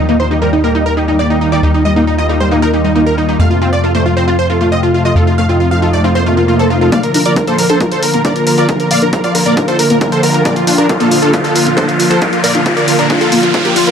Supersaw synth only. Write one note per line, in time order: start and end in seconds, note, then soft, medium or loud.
0.09 0.17 D#4 medium
0.20 0.28 C5 medium
0.31 0.40 D#4 medium
0.42 0.50 A#4 medium
0.53 0.62 D#4 medium
0.64 0.72 A#4 medium
0.75 0.84 D#4 medium
0.86 0.95 A#4 medium
0.97 1.06 D#4 medium
1.08 1.17 D#4 medium
1.19 1.28 D5 medium
1.30 1.39 D#4 medium
1.41 1.50 D#4 medium
1.52 1.61 D5 medium
1.63 1.72 D#4 medium
1.74 1.83 D#4 medium
1.85 1.94 D#5 medium
1.96 2.05 D#4 medium
2.07 2.16 D#4 medium
2.19 2.27 D#5 medium
2.29 2.38 D#4 medium
2.40 2.49 C5 medium
2.52 2.60 D#4 medium
2.62 2.71 A#4 medium
2.74 2.82 D#4 medium
2.85 2.93 D#4 medium
2.96 3.04 D#4 medium
3.06 3.15 A#4 medium
3.18 3.26 D#4 medium
3.29 3.37 D#4 medium
3.40 3.48 F5 loud
3.51 3.59 F4 medium
3.62 3.70 F4 medium
3.73 3.81 D5 medium
3.84 3.92 F4 medium
3.95 4.03 C5 medium
4.06 4.14 F4 medium
4.17 4.25 C5 medium
4.28 4.36 F4 medium
4.39 4.47 C5 medium
4.50 4.58 F4 medium
4.61 4.69 F4 medium
4.72 4.81 D#5 medium
4.83 4.92 F4 medium
4.94 5.03 F4 medium
5.05 5.14 D#5 medium
5.16 5.25 F4 medium
5.27 5.36 F4 medium
5.38 5.47 F5 medium
5.49 5.58 F4 medium
5.60 5.69 F4 medium
5.71 5.80 F5 medium
5.82 5.91 F4 medium
5.93 6.02 D5 medium
6.04 6.13 F4 medium
6.15 6.24 C5 medium
6.26 6.35 F4 medium
6.37 6.46 F4 medium
6.48 6.57 F4 medium
6.59 6.68 A4 medium
6.70 6.79 F4 medium
6.81 6.90 F4 medium
6.92 7.01 D5 medium
6.92 7.01 F5 medium
7.04 7.12 A#4 medium
7.14 7.23 A#4 medium
7.26 7.34 A#4 medium
7.26 7.34 D5 medium
7.37 7.45 A#4 medium
7.48 7.56 A4 medium
7.48 7.56 C5 medium
7.59 7.67 A#4 medium
7.70 7.78 A4 medium
7.70 7.78 C5 medium
7.81 7.89 A#4 medium
7.92 8.00 A4 medium
7.92 8.00 C5 medium
8.03 8.11 A#4 medium
8.14 8.23 A#4 medium
8.25 8.34 A#4 medium
8.25 8.34 D5 loud
8.36 8.45 A#4 medium
8.47 8.56 A#4 medium
8.58 8.67 A#4 medium
8.58 8.67 D5 medium
8.69 8.78 A#4 medium
8.80 8.89 A#4 medium
8.91 9.00 D5 medium
8.91 9.00 F5 loud
9.03 9.11 A#4 medium
9.13 9.22 A#4 medium
9.24 9.33 D5 medium
9.24 9.33 F5 medium
9.35 9.44 A#4 medium
9.46 9.55 A#4 medium
9.46 9.55 D5 medium
9.57 9.66 A#4 medium
9.68 9.77 A4 medium
9.68 9.77 C5 medium
9.79 9.88 A#4 medium
9.90 9.99 A#4 medium
10.01 10.10 A#4 medium
10.12 10.21 A4 medium
10.12 10.21 C5 medium
10.23 10.32 A#4 medium
10.34 10.43 A#4 medium
10.45 10.54 A#4 medium
10.45 10.54 D5 loud
10.56 10.65 F4 medium
10.67 10.76 F4 medium
10.78 10.87 D4 medium
10.78 10.87 A#4 medium
10.89 10.98 F4 medium
11.00 11.09 F4 medium
11.00 11.09 A4 medium
11.11 11.20 F4 medium
11.22 11.31 F4 medium
11.22 11.31 A4 medium
11.33 11.42 F4 medium
11.44 11.53 F4 medium
11.44 11.53 A4 loud
11.55 11.64 F4 medium
11.66 11.75 F4 medium
11.77 11.86 A4 medium
11.77 11.86 C5 medium
11.88 11.97 F4 medium
11.99 12.08 F4 medium
12.10 12.19 A4 medium
12.10 12.19 C5 medium
12.21 12.30 F4 medium
12.33 12.41 F4 medium
12.44 12.53 A#4 medium
12.44 12.53 D5 loud
12.55 12.63 F4 medium
12.66 12.74 F4 medium
12.77 12.85 A#4 medium
12.77 12.85 D5 medium
12.88 12.97 F4 medium
12.99 13.08 D4 medium
12.99 13.08 A#4 medium
13.10 13.19 F4 medium
13.21 13.30 F4 medium
13.21 13.30 A4 loud
13.32 13.41 F4 medium
13.43 13.52 F4 medium
13.54 13.63 F4 medium
13.65 13.74 A#3 medium
13.65 13.74 G4 medium
13.76 13.85 F4 medium
13.87 13.91 F4 medium